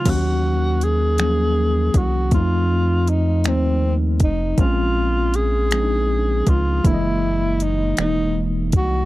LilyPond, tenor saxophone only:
\new Staff \with { instrumentName = "Tenor saxophone" } { \time 6/8 \key ees \dorian \tempo 4. = 53 ges'4 aes'4. ges'8 | f'4 ees'8 c'8 r8 ees'8 | f'4 aes'4. f'8 | fes'4 ees'8 ees'8 r8 ges'8 | }